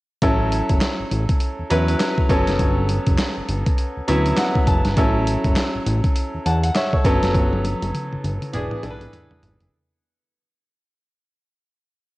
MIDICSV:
0, 0, Header, 1, 4, 480
1, 0, Start_track
1, 0, Tempo, 594059
1, 178, Time_signature, 4, 2, 24, 8
1, 9833, End_track
2, 0, Start_track
2, 0, Title_t, "Grand piano"
2, 0, Program_c, 0, 0
2, 177, Note_on_c, 0, 54, 78
2, 182, Note_on_c, 0, 61, 73
2, 184, Note_on_c, 0, 64, 74
2, 189, Note_on_c, 0, 69, 90
2, 341, Control_c, 0, 64, 127
2, 873, Note_off_c, 0, 54, 0
2, 876, Note_off_c, 0, 61, 0
2, 876, Note_off_c, 0, 64, 0
2, 879, Note_off_c, 0, 69, 0
2, 1374, Note_on_c, 0, 54, 81
2, 1377, Note_on_c, 0, 61, 78
2, 1381, Note_on_c, 0, 64, 72
2, 1383, Note_on_c, 0, 71, 93
2, 1840, Note_off_c, 0, 54, 0
2, 1847, Note_off_c, 0, 61, 0
2, 1852, Note_on_c, 0, 54, 86
2, 1855, Note_on_c, 0, 59, 81
2, 1859, Note_off_c, 0, 64, 0
2, 1859, Note_on_c, 0, 61, 86
2, 1860, Note_off_c, 0, 71, 0
2, 1861, Note_on_c, 0, 69, 93
2, 1869, Control_c, 0, 64, 0
2, 2029, Control_c, 0, 64, 127
2, 2633, Note_off_c, 0, 54, 0
2, 2634, Note_off_c, 0, 59, 0
2, 2636, Note_off_c, 0, 61, 0
2, 2637, Note_off_c, 0, 69, 0
2, 3294, Note_on_c, 0, 54, 84
2, 3297, Note_on_c, 0, 59, 79
2, 3300, Note_on_c, 0, 61, 76
2, 3300, Note_on_c, 0, 76, 76
2, 3303, Note_on_c, 0, 64, 95
2, 3522, Note_off_c, 0, 76, 0
2, 3540, Note_on_c, 0, 78, 72
2, 3762, Note_off_c, 0, 78, 0
2, 3775, Note_on_c, 0, 81, 74
2, 3821, Note_off_c, 0, 54, 0
2, 3822, Note_off_c, 0, 59, 0
2, 3824, Note_off_c, 0, 61, 0
2, 3825, Note_off_c, 0, 64, 0
2, 3999, Note_off_c, 0, 81, 0
2, 4014, Note_on_c, 0, 54, 80
2, 4017, Note_on_c, 0, 61, 76
2, 4022, Note_on_c, 0, 64, 77
2, 4024, Note_on_c, 0, 69, 92
2, 4028, Control_c, 0, 64, 0
2, 4151, Control_c, 0, 64, 127
2, 4711, Note_off_c, 0, 54, 0
2, 4713, Note_off_c, 0, 61, 0
2, 4716, Note_off_c, 0, 64, 0
2, 4717, Note_off_c, 0, 69, 0
2, 5218, Note_on_c, 0, 81, 63
2, 5224, Note_on_c, 0, 78, 58
2, 5350, Note_off_c, 0, 78, 0
2, 5355, Note_off_c, 0, 81, 0
2, 5362, Note_on_c, 0, 78, 66
2, 5453, Note_off_c, 0, 78, 0
2, 5460, Note_on_c, 0, 76, 70
2, 5465, Note_on_c, 0, 73, 59
2, 5592, Note_off_c, 0, 73, 0
2, 5596, Note_off_c, 0, 76, 0
2, 5604, Note_on_c, 0, 73, 59
2, 5606, Note_on_c, 0, 69, 49
2, 5693, Note_off_c, 0, 69, 0
2, 5695, Note_on_c, 0, 54, 89
2, 5698, Note_on_c, 0, 59, 85
2, 5701, Note_on_c, 0, 61, 81
2, 5705, Note_on_c, 0, 69, 94
2, 5709, Control_c, 0, 64, 0
2, 5829, Control_c, 0, 64, 127
2, 5831, Note_off_c, 0, 73, 0
2, 6474, Note_off_c, 0, 54, 0
2, 6476, Note_off_c, 0, 59, 0
2, 6477, Note_off_c, 0, 61, 0
2, 6479, Note_off_c, 0, 69, 0
2, 6892, Note_on_c, 0, 52, 74
2, 6895, Note_on_c, 0, 59, 76
2, 6898, Note_on_c, 0, 62, 75
2, 6902, Note_on_c, 0, 68, 85
2, 6907, Control_c, 0, 64, 0
2, 7057, Control_c, 0, 64, 127
2, 7096, Note_off_c, 0, 52, 0
2, 7098, Note_off_c, 0, 59, 0
2, 7100, Note_off_c, 0, 62, 0
2, 7102, Note_off_c, 0, 68, 0
2, 7134, Note_on_c, 0, 52, 84
2, 7137, Note_on_c, 0, 59, 80
2, 7138, Note_on_c, 0, 62, 72
2, 7142, Note_on_c, 0, 69, 73
2, 7195, Note_on_c, 0, 71, 89
2, 7203, Note_off_c, 0, 69, 0
2, 7660, Note_off_c, 0, 52, 0
2, 7662, Note_off_c, 0, 59, 0
2, 7663, Note_off_c, 0, 62, 0
2, 7691, Note_off_c, 0, 71, 0
2, 7869, Control_c, 0, 64, 0
2, 9833, End_track
3, 0, Start_track
3, 0, Title_t, "Analog synth bass"
3, 0, Program_c, 1, 38
3, 178, Note_on_c, 1, 33, 107
3, 499, Note_off_c, 1, 33, 0
3, 561, Note_on_c, 1, 30, 87
3, 641, Note_off_c, 1, 30, 0
3, 804, Note_on_c, 1, 33, 49
3, 842, Note_off_c, 1, 33, 0
3, 900, Note_on_c, 1, 33, 98
3, 1020, Note_off_c, 1, 33, 0
3, 1284, Note_on_c, 1, 40, 46
3, 1322, Note_off_c, 1, 40, 0
3, 1379, Note_on_c, 1, 40, 96
3, 1579, Note_off_c, 1, 40, 0
3, 1853, Note_on_c, 1, 31, 113
3, 1976, Note_off_c, 1, 31, 0
3, 2004, Note_on_c, 1, 30, 84
3, 2083, Note_off_c, 1, 30, 0
3, 2096, Note_on_c, 1, 31, 113
3, 2418, Note_off_c, 1, 31, 0
3, 2481, Note_on_c, 1, 30, 94
3, 2561, Note_off_c, 1, 30, 0
3, 2722, Note_on_c, 1, 31, 48
3, 2761, Note_off_c, 1, 31, 0
3, 2818, Note_on_c, 1, 31, 91
3, 2938, Note_off_c, 1, 31, 0
3, 3206, Note_on_c, 1, 38, 42
3, 3243, Note_off_c, 1, 38, 0
3, 3301, Note_on_c, 1, 38, 92
3, 3500, Note_off_c, 1, 38, 0
3, 3773, Note_on_c, 1, 30, 104
3, 3895, Note_off_c, 1, 30, 0
3, 3923, Note_on_c, 1, 31, 91
3, 4002, Note_off_c, 1, 31, 0
3, 4016, Note_on_c, 1, 33, 108
3, 4337, Note_off_c, 1, 33, 0
3, 4400, Note_on_c, 1, 30, 93
3, 4481, Note_off_c, 1, 30, 0
3, 4644, Note_on_c, 1, 33, 49
3, 4682, Note_off_c, 1, 33, 0
3, 4739, Note_on_c, 1, 33, 101
3, 4859, Note_off_c, 1, 33, 0
3, 5125, Note_on_c, 1, 40, 46
3, 5162, Note_off_c, 1, 40, 0
3, 5219, Note_on_c, 1, 40, 87
3, 5419, Note_off_c, 1, 40, 0
3, 5693, Note_on_c, 1, 31, 109
3, 5815, Note_off_c, 1, 31, 0
3, 5843, Note_on_c, 1, 30, 85
3, 5922, Note_off_c, 1, 30, 0
3, 5935, Note_on_c, 1, 31, 115
3, 6257, Note_off_c, 1, 31, 0
3, 6322, Note_on_c, 1, 30, 84
3, 6402, Note_off_c, 1, 30, 0
3, 6564, Note_on_c, 1, 31, 52
3, 6601, Note_off_c, 1, 31, 0
3, 6659, Note_on_c, 1, 31, 95
3, 6779, Note_off_c, 1, 31, 0
3, 6900, Note_on_c, 1, 28, 101
3, 7019, Note_off_c, 1, 28, 0
3, 7043, Note_on_c, 1, 35, 46
3, 7081, Note_off_c, 1, 35, 0
3, 7135, Note_on_c, 1, 35, 88
3, 7336, Note_off_c, 1, 35, 0
3, 7617, Note_on_c, 1, 32, 101
3, 7738, Note_off_c, 1, 32, 0
3, 7758, Note_on_c, 1, 30, 82
3, 7840, Note_off_c, 1, 30, 0
3, 9833, End_track
4, 0, Start_track
4, 0, Title_t, "Drums"
4, 176, Note_on_c, 9, 42, 70
4, 177, Note_on_c, 9, 36, 104
4, 257, Note_off_c, 9, 42, 0
4, 258, Note_off_c, 9, 36, 0
4, 420, Note_on_c, 9, 42, 73
4, 501, Note_off_c, 9, 42, 0
4, 561, Note_on_c, 9, 42, 53
4, 562, Note_on_c, 9, 36, 90
4, 641, Note_off_c, 9, 42, 0
4, 643, Note_off_c, 9, 36, 0
4, 656, Note_on_c, 9, 38, 116
4, 657, Note_on_c, 9, 39, 87
4, 658, Note_on_c, 9, 42, 73
4, 736, Note_off_c, 9, 38, 0
4, 738, Note_off_c, 9, 39, 0
4, 739, Note_off_c, 9, 42, 0
4, 900, Note_on_c, 9, 42, 63
4, 981, Note_off_c, 9, 42, 0
4, 1042, Note_on_c, 9, 42, 53
4, 1043, Note_on_c, 9, 36, 100
4, 1123, Note_off_c, 9, 36, 0
4, 1123, Note_off_c, 9, 42, 0
4, 1133, Note_on_c, 9, 42, 77
4, 1213, Note_off_c, 9, 42, 0
4, 1377, Note_on_c, 9, 42, 73
4, 1458, Note_off_c, 9, 42, 0
4, 1522, Note_on_c, 9, 42, 55
4, 1603, Note_off_c, 9, 42, 0
4, 1617, Note_on_c, 9, 38, 94
4, 1619, Note_on_c, 9, 39, 73
4, 1621, Note_on_c, 9, 42, 76
4, 1698, Note_off_c, 9, 38, 0
4, 1700, Note_off_c, 9, 39, 0
4, 1702, Note_off_c, 9, 42, 0
4, 1761, Note_on_c, 9, 36, 88
4, 1842, Note_off_c, 9, 36, 0
4, 1854, Note_on_c, 9, 36, 90
4, 1857, Note_on_c, 9, 42, 75
4, 1935, Note_off_c, 9, 36, 0
4, 1938, Note_off_c, 9, 42, 0
4, 1999, Note_on_c, 9, 42, 54
4, 2001, Note_on_c, 9, 38, 61
4, 2080, Note_off_c, 9, 42, 0
4, 2082, Note_off_c, 9, 38, 0
4, 2096, Note_on_c, 9, 36, 98
4, 2096, Note_on_c, 9, 42, 69
4, 2177, Note_off_c, 9, 36, 0
4, 2177, Note_off_c, 9, 42, 0
4, 2335, Note_on_c, 9, 42, 74
4, 2416, Note_off_c, 9, 42, 0
4, 2477, Note_on_c, 9, 42, 50
4, 2480, Note_on_c, 9, 36, 84
4, 2558, Note_off_c, 9, 42, 0
4, 2561, Note_off_c, 9, 36, 0
4, 2572, Note_on_c, 9, 38, 107
4, 2574, Note_on_c, 9, 39, 91
4, 2575, Note_on_c, 9, 42, 76
4, 2653, Note_off_c, 9, 38, 0
4, 2655, Note_off_c, 9, 39, 0
4, 2656, Note_off_c, 9, 42, 0
4, 2817, Note_on_c, 9, 42, 65
4, 2898, Note_off_c, 9, 42, 0
4, 2961, Note_on_c, 9, 36, 95
4, 2961, Note_on_c, 9, 42, 53
4, 3042, Note_off_c, 9, 36, 0
4, 3042, Note_off_c, 9, 42, 0
4, 3055, Note_on_c, 9, 42, 73
4, 3136, Note_off_c, 9, 42, 0
4, 3298, Note_on_c, 9, 42, 72
4, 3378, Note_off_c, 9, 42, 0
4, 3440, Note_on_c, 9, 42, 54
4, 3521, Note_off_c, 9, 42, 0
4, 3533, Note_on_c, 9, 38, 99
4, 3535, Note_on_c, 9, 39, 75
4, 3537, Note_on_c, 9, 42, 77
4, 3614, Note_off_c, 9, 38, 0
4, 3616, Note_off_c, 9, 39, 0
4, 3618, Note_off_c, 9, 42, 0
4, 3679, Note_on_c, 9, 36, 89
4, 3760, Note_off_c, 9, 36, 0
4, 3773, Note_on_c, 9, 36, 100
4, 3774, Note_on_c, 9, 42, 78
4, 3854, Note_off_c, 9, 36, 0
4, 3855, Note_off_c, 9, 42, 0
4, 3917, Note_on_c, 9, 42, 53
4, 3918, Note_on_c, 9, 38, 64
4, 3997, Note_off_c, 9, 42, 0
4, 3999, Note_off_c, 9, 38, 0
4, 4014, Note_on_c, 9, 42, 67
4, 4015, Note_on_c, 9, 36, 103
4, 4095, Note_off_c, 9, 42, 0
4, 4096, Note_off_c, 9, 36, 0
4, 4259, Note_on_c, 9, 42, 75
4, 4340, Note_off_c, 9, 42, 0
4, 4400, Note_on_c, 9, 36, 90
4, 4400, Note_on_c, 9, 42, 51
4, 4480, Note_off_c, 9, 42, 0
4, 4481, Note_off_c, 9, 36, 0
4, 4494, Note_on_c, 9, 38, 115
4, 4496, Note_on_c, 9, 39, 88
4, 4497, Note_on_c, 9, 42, 67
4, 4575, Note_off_c, 9, 38, 0
4, 4577, Note_off_c, 9, 39, 0
4, 4577, Note_off_c, 9, 42, 0
4, 4739, Note_on_c, 9, 42, 61
4, 4820, Note_off_c, 9, 42, 0
4, 4881, Note_on_c, 9, 36, 96
4, 4881, Note_on_c, 9, 42, 51
4, 4962, Note_off_c, 9, 36, 0
4, 4962, Note_off_c, 9, 42, 0
4, 4975, Note_on_c, 9, 42, 81
4, 5056, Note_off_c, 9, 42, 0
4, 5220, Note_on_c, 9, 42, 78
4, 5300, Note_off_c, 9, 42, 0
4, 5361, Note_on_c, 9, 42, 56
4, 5442, Note_off_c, 9, 42, 0
4, 5457, Note_on_c, 9, 38, 96
4, 5459, Note_on_c, 9, 39, 71
4, 5461, Note_on_c, 9, 42, 79
4, 5538, Note_off_c, 9, 38, 0
4, 5540, Note_off_c, 9, 39, 0
4, 5541, Note_off_c, 9, 42, 0
4, 5600, Note_on_c, 9, 36, 85
4, 5681, Note_off_c, 9, 36, 0
4, 5693, Note_on_c, 9, 36, 96
4, 5696, Note_on_c, 9, 42, 78
4, 5774, Note_off_c, 9, 36, 0
4, 5776, Note_off_c, 9, 42, 0
4, 5841, Note_on_c, 9, 42, 51
4, 5842, Note_on_c, 9, 38, 61
4, 5921, Note_off_c, 9, 42, 0
4, 5923, Note_off_c, 9, 38, 0
4, 5936, Note_on_c, 9, 36, 102
4, 5938, Note_on_c, 9, 42, 64
4, 5938, Note_on_c, 9, 48, 52
4, 6017, Note_off_c, 9, 36, 0
4, 6019, Note_off_c, 9, 42, 0
4, 6019, Note_off_c, 9, 48, 0
4, 6084, Note_on_c, 9, 48, 50
4, 6165, Note_off_c, 9, 48, 0
4, 6178, Note_on_c, 9, 48, 59
4, 6179, Note_on_c, 9, 42, 72
4, 6259, Note_off_c, 9, 48, 0
4, 6260, Note_off_c, 9, 42, 0
4, 6323, Note_on_c, 9, 42, 52
4, 6324, Note_on_c, 9, 48, 53
4, 6404, Note_off_c, 9, 42, 0
4, 6405, Note_off_c, 9, 48, 0
4, 6420, Note_on_c, 9, 47, 65
4, 6422, Note_on_c, 9, 42, 72
4, 6501, Note_off_c, 9, 47, 0
4, 6502, Note_off_c, 9, 42, 0
4, 6566, Note_on_c, 9, 47, 59
4, 6647, Note_off_c, 9, 47, 0
4, 6659, Note_on_c, 9, 47, 71
4, 6662, Note_on_c, 9, 42, 68
4, 6740, Note_off_c, 9, 47, 0
4, 6743, Note_off_c, 9, 42, 0
4, 6804, Note_on_c, 9, 47, 65
4, 6805, Note_on_c, 9, 42, 53
4, 6885, Note_off_c, 9, 47, 0
4, 6886, Note_off_c, 9, 42, 0
4, 6897, Note_on_c, 9, 42, 75
4, 6898, Note_on_c, 9, 45, 82
4, 6978, Note_off_c, 9, 42, 0
4, 6979, Note_off_c, 9, 45, 0
4, 7041, Note_on_c, 9, 45, 71
4, 7122, Note_off_c, 9, 45, 0
4, 7137, Note_on_c, 9, 45, 87
4, 7138, Note_on_c, 9, 42, 72
4, 7218, Note_off_c, 9, 45, 0
4, 7219, Note_off_c, 9, 42, 0
4, 7282, Note_on_c, 9, 45, 81
4, 7283, Note_on_c, 9, 42, 49
4, 7363, Note_off_c, 9, 42, 0
4, 7363, Note_off_c, 9, 45, 0
4, 7379, Note_on_c, 9, 43, 87
4, 7381, Note_on_c, 9, 42, 78
4, 7460, Note_off_c, 9, 43, 0
4, 7462, Note_off_c, 9, 42, 0
4, 7522, Note_on_c, 9, 43, 81
4, 7603, Note_off_c, 9, 43, 0
4, 7619, Note_on_c, 9, 43, 89
4, 7620, Note_on_c, 9, 42, 80
4, 7700, Note_off_c, 9, 42, 0
4, 7700, Note_off_c, 9, 43, 0
4, 7760, Note_on_c, 9, 42, 53
4, 7762, Note_on_c, 9, 43, 79
4, 7841, Note_off_c, 9, 42, 0
4, 7842, Note_off_c, 9, 43, 0
4, 9833, End_track
0, 0, End_of_file